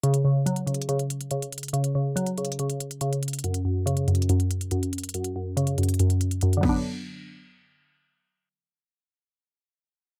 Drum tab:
CC |------------------------------------------------------------------------------------------------|------------------------------------------------------------------------------------------------|------------------------------------------------------------------------------------------------|------------------------------------------------------------------------------------x-----------|
HH |x-----x-----------------x-----x-----x---x---x---x-----x-----x-----x-----x-----x-----x--x--x--x--|x-----x-----------------x-----x-----x---x---x---x-----x-----x-----x-----x-----x-----x--x--x--x--|x-----x-----------------x-----x-----x---x---x---x-----x-----x-----x-----x-----x-----x--x--x--x--|x-----x-----------------x-----x-----x--x--x--x--x-----x-----x-----x-----x-----x-----------------|
BD |------------------------------------------------------------------------------------------------|------------------------------------------------------------------------------------------------|------------------------------------------------------------------------------------------------|------------------------------------------------------------------------------------o-----------|

CC |------------------------------------------------------------------------------------------------|------------------------------------------------------------------------------------------------|
HH |------------------------------------------------------------------------------------------------|------------------------------------------------------------------------------------------------|
BD |------------------------------------------------------------------------------------------------|------------------------------------------------------------------------------------------------|